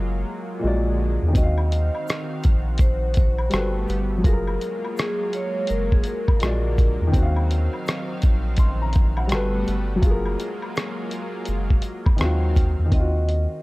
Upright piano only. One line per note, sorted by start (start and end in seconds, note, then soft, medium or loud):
0.00 0.55 F#3 medium
0.00 0.58 F4 medium
0.00 0.60 G#4 medium
0.00 0.66 A#4 medium
0.59 1.33 A#2 medium
0.59 1.35 G#3 medium
0.64 1.36 F#4 medium
0.64 1.37 D5 medium
1.28 3.45 D#3 medium
1.33 3.47 C4 medium
1.38 3.49 F#4 medium
1.43 3.52 F5 medium
3.50 4.23 G3 medium
3.50 4.24 F#4 medium
3.54 4.26 A4 medium
3.54 4.27 B4 medium
4.18 6.34 F#3 medium
4.23 6.37 F4 medium
4.28 6.39 G#4 medium
4.33 6.42 A#4 medium
6.39 7.12 A#2 medium
6.39 7.14 G#3 medium
6.44 7.15 F#4 medium
6.44 7.16 D5 medium
7.07 9.23 D#3 medium
7.12 9.26 C4 medium
7.17 9.28 F#4 medium
7.23 8.60 F5 medium
8.59 8.80 C6 medium
8.82 9.16 A#5 medium
9.18 9.52 F#5 medium
9.27 10.01 G3 medium
9.27 10.03 F#4 medium
9.32 10.04 A4 medium
9.32 10.05 B4 medium
9.96 12.12 F#3 medium
10.01 12.15 F4 medium
10.06 12.17 G#4 medium
10.11 12.20 A#4 medium
12.16 12.84 D#3 medium
12.16 12.89 C4 medium
12.21 12.93 F4 medium
12.21 12.94 F#4 medium
12.85 13.62 D#3 medium
12.90 13.62 C4 medium
12.95 13.62 F4 medium
13.00 13.62 F#4 medium